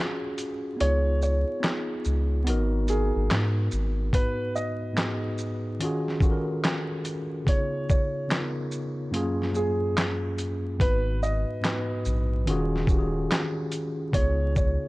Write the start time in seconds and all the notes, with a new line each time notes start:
Already playing: C#4 F4 F#4 G#4 D#5
0.38 closed hi-hat, shaker
0.76 B3 D#4 F4, closed hi-hat
0.81 C#2 G#4 C#5
1.22 C#5, shaker
1.60 B3 D#4 F4, clap, closed hi-hat
1.64 G#4, snare
2.05 C#2, shaker
2.44 G#1 B3 D#4 F#4, closed hi-hat
2.50 A#4
2.86 B3 D#4 F#4 G#4, closed hi-hat, shaker
2.91 A#4
3.16 G#1
3.31 G#2, snare, clap, closed hi-hat
3.71 G#1, shaker
4.12 G#2 B3 D#4 B4, kick, closed hi-hat
4.16 F#4 B4
4.55 D#5, shaker
4.93 G#2 B3 D#4 F#4
4.97 G#4, snare, clap, closed hi-hat
5.38 shaker
5.79 D#3 C#4 F4 F#4, closed hi-hat
5.85 G#4
6.08 snare
6.20 D#3 C#4 F4 F#4, kick, shaker
6.25 A4
6.31 A#4
6.65 snare, clap, closed hi-hat
7.05 closed hi-hat, shaker
7.44 C#3 B3 D#4, kick, closed hi-hat
7.48 F4 G#4 C#5
7.89 C#5, kick, shaker
8.28 C#3 B3 D#4 F4, snare, clap, closed hi-hat
8.33 A#4
8.72 shaker
9.11 F#2 A#3 C#4 F4, closed hi-hat
9.16 G#4
9.42 snare
9.52 F#2 A#3 C#4 F4, shaker
9.56 G#4
9.98 snare, clap, closed hi-hat
10.38 closed hi-hat, shaker
10.78 G#1 G#2 B3 D#4 F#4 B4, kick, closed hi-hat
10.83 B4
11.23 D#5, shaker
11.61 G#2 B3 D#4 F#4, clap, closed hi-hat
11.65 B4, snare
12.05 A#1, shaker
12.45 D#1 D#3 C#4 F4, closed hi-hat
12.50 F#4 G#4
12.76 snare
12.87 D#1 D#3 C#4 F4 F#4, kick, shaker
12.92 G4
12.98 G#4
13.32 snare, clap, closed hi-hat
13.72 closed hi-hat, shaker
14.12 C#2 C#3 B3 D#4 F4 C#5, kick, closed hi-hat
14.17 G#4
14.56 C#5, kick, shaker